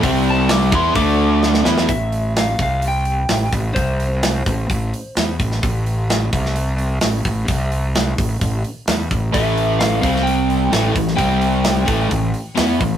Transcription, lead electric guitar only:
X:1
M:4/4
L:1/8
Q:1/4=129
K:Am
V:1 name="Lead electric guitar"
z a d' c' d'4 | e2 f f g3 z | c6- c z | z8 |
z8 | e2 f f g3 z | g6- g z |]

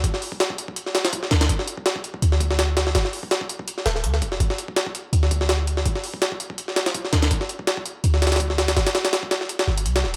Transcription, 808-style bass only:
X:1
M:4/4
L:1/8
Q:"Swing 16ths" 1/4=165
K:Dphr
V:1 name="808-style bass" clef=bass
G,,, z6 D,, | G,,, z3 D,,4 | G,,, z4 D,,, D,, F,,, | G,,, z3 D,,4 |
G,,, z6 D,, | G,,, z3 D,,4 | G,,, z4 G,,, C,, D,,, |]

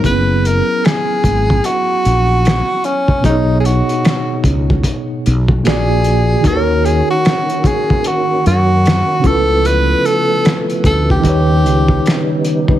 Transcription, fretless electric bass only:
X:1
M:4/4
L:1/16
Q:"Swing 16ths" 1/4=75
K:F#mix
V:1 name="Fretless electric bass" clef=bass
F,,,3 z3 G,,,2 z2 A,,,3 z3 | B,,,3 z3 C,,2 z2 B,,,2 A,,,4 | D,,3 z6 z F,,3 z C,,2- | C,,2 z4 =D,,2 ^D,,2 C,,2 z4 |]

